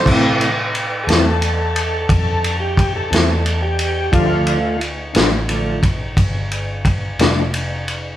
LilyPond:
<<
  \new Staff \with { instrumentName = "Tonewheel organ" } { \time 12/8 \key a \minor \tempo 4. = 59 r4. <gis' a'>2~ <gis' a'>16 g'8 a'8 a'8 g'8. | f'4 r1 r4 | }
  \new Staff \with { instrumentName = "Tonewheel organ" } { \clef bass \time 12/8 \key a \minor <c e a>8 r1 r4. | <d f a>8 r4. <d f a>8 r2. r8 | }
  \new Staff \with { instrumentName = "Clean electric guitar" } { \clef bass \time 12/8 \key a \minor <a, e c' e'>8 r4 <a, e c' e'>8 r2 r8 <a, e c' e'>8 r4 | <d f a d'>8 r4 <d f a d'>8 r2 r8 <d f a d'>8 r4 | }
  \new Staff \with { instrumentName = "Fingered electric bass" } { \clef bass \time 12/8 \key a \minor a,4. e,4. f,4. e,4. | d,4. a,,4. g,,4. f,,4. | }
  \new DrumStaff \with { instrumentName = "Drums" } \drummode { \time 12/8 <cymc bd>8 cymr8 cymr8 <cymr sn>8 cymr8 cymr8 <bd cymr>8 cymr8 <bd cymr>8 <cymr sn>8 cymr8 cymr8 | <bd cymr>8 cymr8 cymr8 <cymr sn>8 cymr8 <bd cymr>8 <bd cymr>8 cymr8 <bd cymr>8 <cymr sn>8 cymr8 cymr8 | }
>>